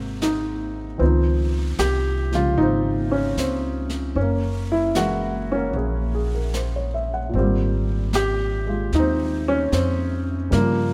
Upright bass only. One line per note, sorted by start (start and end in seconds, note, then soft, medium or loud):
0.00 0.96 G#1 medium
1.00 1.75 C#2 medium
1.79 2.54 C2 medium
2.58 3.33 G#1 medium
3.36 4.11 C#2 medium
4.15 5.70 F#1 medium
5.73 7.30 A#1 medium
7.34 8.89 G#1 medium
8.92 9.68 D#2 medium
9.72 10.47 F2 medium
10.52 10.94 G2 medium